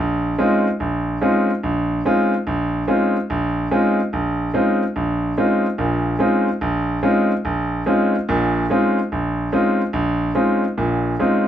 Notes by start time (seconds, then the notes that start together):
0.00 A#1
0.39 G#3 C4 C#4 D#4 F4
0.80 A#1
1.21 G#3 C4 C#4 D#4 F4
1.63 A#1
2.05 G#3 C4 C#4 D#4 F4
2.47 A#1
2.88 G#3 C4 C#4 D#4 F4
3.30 A#1
3.71 G#3 C4 C#4 D#4 F4
4.13 A#1
4.54 G#3 C4 C#4 D#4 F4
4.96 A#1
5.38 G#3 C4 C#4 D#4 F4
5.78 A#1 A#2
6.19 G#3 C4 C#4 D#4 F4
6.61 A#1
7.03 G#3 C4 C#4 D#4 F4
7.45 A#1
7.86 G#3 C4 C#4 D#4 F4
8.29 A#1 A#2
8.70 G#3 C4 C#4 D#4 F4
9.12 A#1
9.52 G#3 C4 C#4 D#4 F4
9.93 A#1
10.35 G#3 C4 C#4 D#4 F4
10.78 A#1 A#2
11.19 G#3 C4 C#4 D#4 F4